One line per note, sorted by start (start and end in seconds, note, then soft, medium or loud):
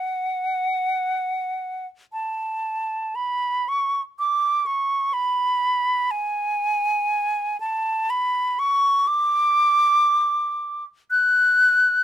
0.00 1.86 F#5 medium
2.13 3.17 A5 medium
3.15 3.70 B5 medium
3.69 4.02 C#6 medium
4.19 4.68 D6 medium
4.66 5.15 C#6 medium
5.13 6.12 B5 medium
6.11 7.60 G#5 medium
7.60 8.12 A5 medium
8.10 8.61 B5 medium
8.59 9.09 C#6 loud
9.07 10.84 D6 loud
11.11 12.04 F#6 loud